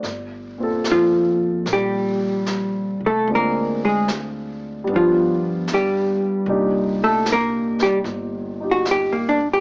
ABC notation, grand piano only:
X:1
M:4/4
L:1/8
Q:"Swing" 1/4=75
K:Gm
V:1 name="Grand piano"
d [B,,CFA]6- [B,,CFA] | [_A,CDF]4 [G,=B,DF]4 | [B,,DEG]4- [B,,DEG] [EFG]3 |]